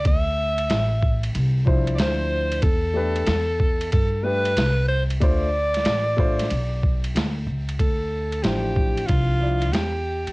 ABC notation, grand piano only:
X:1
M:4/4
L:1/8
Q:"Swing 16ths" 1/4=93
K:Ddor
V:1 name="Grand piano"
z4 z [F,DEc]3 | z [A,DGB] z3 [A,DGB] z2 | [A,DFc] z2 [A,DFc] z4 | z2 [F,DEc]3 [F,DEd] z2 |]